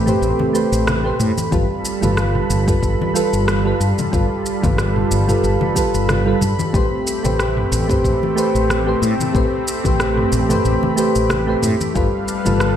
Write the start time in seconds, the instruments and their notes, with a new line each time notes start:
Already playing: fretless electric bass A1, analog synth pad A3 C4 G4 B5
0.06 synth keys A3 G4 B4 C5, mid tom, shaker
0.22 fretless electric bass A1, shaker
0.39 high conga, low conga
0.53 synth keys A3 G4 B4 C5, shaker
0.72 fretless electric bass A1, shaker
0.87 cross-stick, high conga, low conga, shaker
1.04 synth keys A3 G4 B4 C5
1.20 fretless electric bass A2, mid tom, shaker
1.38 high conga, shaker
1.51 fretless electric bass G1, synth keys G3 F4 A4 B4, analog synth pad G3 F4 A4, kick, shaker
1.85 shaker
2.01 fretless electric bass G1, synth keys G3 F4 A4 B4, high conga, low conga, shaker
2.17 cross-stick, shaker
2.35 mid tom
2.50 fretless electric bass G1, shaker
2.67 synth keys G3 F4 A4 B4, kick, mid tom, shaker
2.82 fretless electric bass G1, kick, shaker
3.01 high conga
3.14 synth keys G3 F4 A4 B4, shaker
3.33 fretless electric bass G1, shaker
3.48 cross-stick, high conga, shaker
3.64 synth keys G3 F4 A4 B4
3.80 fretless electric bass G2, shaker
3.98 high conga, low conga, shaker
4.12 fretless electric bass G1, synth keys G3 F4 A4 B4, kick, shaker
4.46 shaker
4.62 fretless electric bass G1, synth keys G3 F4 A4 B4, kick, high conga, low conga, shaker
4.78 cross-stick, shaker
4.96 mid tom
5.11 fretless electric bass G1, high conga, shaker
5.27 synth keys G3 F4 A4 B4, mid tom, shaker
5.44 fretless electric bass G1, shaker
5.61 high conga, low conga
5.75 synth keys G3 F4 A4 B4, kick, shaker
5.94 fretless electric bass G1, shaker
6.08 cross-stick, high conga, low conga, shaker
6.25 synth keys G3 F4 A4 B4
6.41 fretless electric bass G2, mid tom, shaker
6.59 high conga, shaker
6.73 fretless electric bass A1, synth keys A3 G4 B4 C5, analog synth pad A3 C4 G4, kick, shaker
7.07 shaker
7.23 fretless electric bass A1, synth keys A3 G4 B4 C5, high conga, low conga, shaker
7.39 cross-stick, shaker
7.57 mid tom
7.72 fretless electric bass A1, high conga, shaker
7.88 synth keys A3 G4 B4 C5, kick, mid tom, shaker
8.04 fretless electric bass A1, kick, shaker
8.23 high conga
8.36 synth keys A3 G4 B4 C5, shaker
8.55 fretless electric bass A1, shaker
8.70 cross-stick, high conga, shaker
8.86 synth keys A3 G4 B4 C5
9.02 fretless electric bass A2, shaker
9.20 high conga, low conga, shaker
9.34 fretless electric bass A1, synth keys A3 G4 B4 C5, kick, shaker
9.68 shaker
9.84 fretless electric bass A1, synth keys A3 G4 B4 C5, kick, high conga, low conga, shaker
10.00 cross-stick, shaker
10.17 mid tom
10.32 fretless electric bass A1, shaker
10.49 synth keys A3 G4 B4 C5, mid tom, shaker
10.65 fretless electric bass A1, shaker
10.83 high conga, low conga
10.96 synth keys A3 G4 B4 C5, shaker
11.15 fretless electric bass A1, shaker
11.29 cross-stick, high conga, low conga, shaker
11.47 synth keys A3 G4 B4 C5
11.63 fretless electric bass A2, mid tom, shaker
11.81 high conga, shaker
11.94 fretless electric bass G1, synth keys G3 F4 A4 B4, analog synth pad G3 A4 B4 F5, kick, shaker
12.28 shaker
12.45 fretless electric bass G1, synth keys G3 F4 A4 B4, high conga, low conga, shaker
12.60 cross-stick, shaker